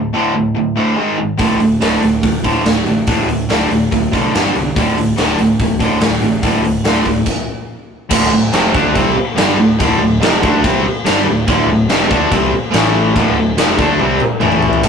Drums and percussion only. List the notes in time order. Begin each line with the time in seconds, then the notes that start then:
1.39 kick, open hi-hat
1.60 open hi-hat
1.81 snare, open hi-hat
2.02 open hi-hat
2.23 kick, open hi-hat
2.44 kick, open hi-hat
2.66 snare, open hi-hat
2.86 open hi-hat
3.07 kick, open hi-hat
3.29 open hi-hat
3.50 snare, open hi-hat
3.71 open hi-hat
3.92 kick, open hi-hat
4.13 kick, open hi-hat
4.35 snare, open hi-hat
4.56 open hi-hat
4.76 kick, open hi-hat
4.98 open hi-hat
5.18 snare, open hi-hat
5.39 open hi-hat
5.59 kick, open hi-hat
5.80 kick, open hi-hat
6.01 snare, open hi-hat
6.22 open hi-hat
6.43 kick, open hi-hat
6.65 open hi-hat
6.85 snare, open hi-hat
7.05 kick, open hi-hat
7.26 kick, crash
8.11 kick, crash
8.53 snare, crash
8.74 kick
8.95 kick, crash
9.38 snare, crash
9.80 kick, crash
10.22 snare, crash
10.43 kick
10.64 kick, crash
11.06 snare, crash
11.48 kick, crash
11.89 snare, crash
12.11 kick
12.32 kick, crash
12.74 snare, crash
13.16 kick, crash
13.58 snare, crash
13.79 kick
14.00 high tom
14.20 mid tom
14.41 mid tom
14.52 mid tom
14.62 floor tom
14.73 floor tom
14.83 kick, crash